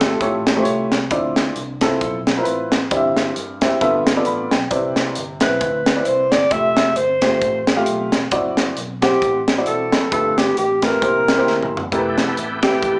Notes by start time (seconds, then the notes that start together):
Already playing: G1 A4
0.01 A3 F4 G4 A4, kick, snare, closed hi-hat
0.20 A1 A2 A3 F4 G4 C#5, kick, closed hi-hat
0.47 snare, closed hi-hat
0.57 A3 F4 G4 C5
0.63 C2 C#5, closed hi-hat
0.91 C2, snare, closed hi-hat
1.11 D2 D3 C4 E4 F4 D5, kick, closed hi-hat
1.36 snare, closed hi-hat
1.56 C2, closed hi-hat
1.81 C4 E4 F4 A4, kick, snare, closed hi-hat
2.01 B1, kick, closed hi-hat
2.27 snare, closed hi-hat
2.37 C4 E4 F4 A#4
2.43 A1 B4, closed hi-hat
2.72 snare, closed hi-hat
2.91 G1 G2 C4 E4 G4 D5, kick, closed hi-hat
2.97 E5
3.17 snare, closed hi-hat
3.36 G2, closed hi-hat
3.61 C4 E4 G4 E5, kick, snare, closed hi-hat
3.81 G1 G2 B3 F4 A4 E5, kick, closed hi-hat
4.07 snare, closed hi-hat
4.16 B3 F4 A4 D5
4.25 A1 B5, closed hi-hat
4.51 B1 G5, snare, closed hi-hat
4.70 C2 C3 C4 E4 B4 D5, kick, closed hi-hat
4.96 snare, closed hi-hat
5.15 G1, closed hi-hat
5.40 B1 C4 E4 B4 E5, kick, snare, closed hi-hat
5.61 D2, kick, closed hi-hat
5.86 snare, closed hi-hat
5.96 C4 E4 B4 D5
6.05 C2 C5, closed hi-hat
6.31 G1 D5, snare, closed hi-hat
6.51 F1 A3 F4 G4 E5, kick, closed hi-hat
6.77 snare, closed hi-hat
6.96 G1 C5, closed hi-hat
7.22 A3 F4 G4 C5, kick, snare, closed hi-hat
7.42 A1, kick, closed hi-hat
7.67 snare, closed hi-hat
7.76 A3 F4 G4 F5
7.86 B1, closed hi-hat
8.12 E1, snare, closed hi-hat
8.31 F#1 C4 E4 F#4 D5, kick, closed hi-hat
8.57 snare, closed hi-hat
8.76 B1, closed hi-hat
9.02 C4 E4 G4 C5 F#5, kick, snare, closed hi-hat
9.22 A1, kick, closed hi-hat
9.48 snare, closed hi-hat
9.57 C4 E4 F#4 D5
9.66 E1 A4, closed hi-hat
9.92 F#1, snare, closed hi-hat
10.11 G1 G2 A3 F4 G4 A4 B4, kick, closed hi-hat
10.38 G4, snare, closed hi-hat
10.57 A1 G4, closed hi-hat
10.82 A3 F4 G4 A#4 B4, kick, snare, closed hi-hat
11.02 C2 C3 A#3 E4 G4 C5, kick, closed hi-hat
11.28 snare, closed hi-hat
11.37 A#3 E4 G4 C5
11.47 D2, snare
11.62 mid tom
11.72 G1
11.77 floor tom
11.92 F1 E3 A3 B3 E4 G4 A#4, kick, closed hi-hat
11.98 B4
12.18 snare, closed hi-hat
12.37 A1, closed hi-hat
12.63 A3 E4 G4 A4, kick, snare, closed hi-hat
12.69 B4
12.82 A1, kick, closed hi-hat